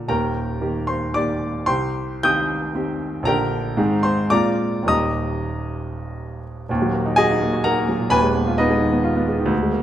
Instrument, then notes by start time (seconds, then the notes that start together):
grand piano
Already playing: A#2 D3 A#3 F4 A#4 G5 A#5
0.08 D#1 D#2 A#4 G5 A#5
0.61 D#3 A#3 G4
0.87 C5 C6
1.14 D#3 A#3 G4 D5 D6
1.66 C2 C5 G5 C6
2.23 D#3 C4 G4 G5 D#6 G6
2.75 D#3 C4 G4
3.23 A#1 D3 A#5
3.27 D4 G4 A#4 G5
3.77 G#2 D#3 C4 G#4
4.03 C5 C6
4.30 A#2 G#3 C4 F4 D5 A#5 D6
4.83 D#2 G3 A#3
4.87 D#1 D#4 D#5 A#5 D#6
6.69 D#1 D#2
6.82 F#3
6.93 A#3
7.06 D#4
7.16 F#4 G#4 D#5 G#5
7.31 D#4
7.42 A#3
7.53 F#4
7.64 D#4 A#4 F#5 A#5
7.78 A#3
7.88 F#3
8.00 A#2
8.10 D#1 D#2 B4 G#5 B5
8.22 G#3
8.34 B3
8.47 F4
8.58 B3 D#4 B4 D#5
8.70 G#3
8.81 D#3
8.93 B3
9.04 F4
9.16 B3
9.28 G#3
9.39 D#3
9.46 D2
9.62 G#3
9.73 A#3